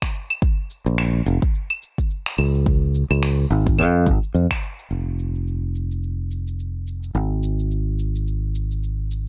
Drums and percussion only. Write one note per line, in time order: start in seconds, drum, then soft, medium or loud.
0.02 finger snap medium
0.02 kick medium
0.15 shaker medium
0.30 claves medium
0.30 shaker soft
0.42 kick loud
0.42 shaker soft
0.70 shaker medium
0.86 shaker soft
0.98 finger snap medium
0.98 claves medium
0.98 shaker soft
1.26 shaker medium
1.42 kick loud
1.42 shaker soft
1.54 shaker soft
1.70 claves medium
1.83 shaker medium
1.98 kick medium
1.98 shaker soft
2.11 shaker soft
2.26 finger snap medium
2.38 claves medium
2.38 shaker medium
2.55 shaker soft
2.66 kick loud
2.66 shaker soft
2.95 shaker medium
3.11 claves medium
3.11 shaker soft
3.23 finger snap medium
3.23 shaker soft
3.51 shaker medium
3.67 kick loud
3.67 shaker soft
3.79 claves medium
3.79 shaker soft
4.07 kick loud
4.07 shaker medium
4.23 shaker soft
4.35 shaker soft
4.51 finger snap medium
4.51 kick medium
4.51 claves medium
4.63 shaker medium
4.79 shaker soft
4.91 shaker soft
5.19 shaker medium
5.35 shaker soft
5.47 shaker soft
5.75 shaker medium
5.91 shaker soft
6.03 shaker soft
6.31 shaker medium
6.47 shaker soft
6.59 shaker soft
6.87 shaker medium
7.03 shaker soft
7.15 shaker soft
7.43 shaker medium
7.59 shaker soft
7.71 shaker soft
7.99 shaker medium
8.15 shaker soft
8.27 shaker soft
8.55 shaker medium
8.71 shaker soft
8.83 shaker soft
9.11 shaker medium